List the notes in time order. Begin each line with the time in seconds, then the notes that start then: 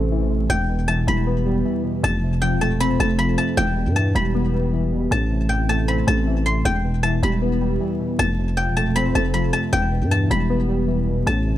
Already playing: A1 A2 C3 E3 A3 C4
0.12 E3
0.30 C3
0.50 E1 E2 G5
0.69 B2
0.88 E3 A5
1.07 E1 G3 B5
1.27 B3
1.46 G3
1.65 E3
1.84 B2
2.04 F1 F2 A5
2.23 C3
2.42 F3 G5
2.52 E1
2.61 A3 A5
2.80 C4 B5
2.99 F1 A3 A5
3.19 F3 B5
3.38 C3 A5
3.57 E1 E2 G5
3.76 B2
3.86 G2
3.96 E3 A5
4.15 E1 G3 B5
4.35 B3
4.53 G3
4.73 E3
4.92 B2
5.11 A1 A2 A5
5.30 C3
5.49 E3 G5
5.69 A3 A5
5.88 C4 B5
6.07 A1 A3 A5
6.27 E3
6.45 C3 C6
6.65 E1 E2 G5
6.84 B2
7.03 E3 A5
7.23 E1 G3 B5
7.42 B3
7.61 G3
7.80 E3
7.99 B2
8.19 F1 F2 A5
8.39 C3
8.57 F3 G5
8.67 E1
8.76 A3 A5
8.96 C4 B5
9.15 F1 A3 A5
9.34 F3 B5
9.53 C3 A5
9.73 E1 E2 G5
9.92 B2
10.02 G2
10.11 E3 A5
10.30 E1 G3 B5
10.50 B3
10.69 G3
10.88 E3
11.08 B2
11.27 A1 A2 A5
11.46 C3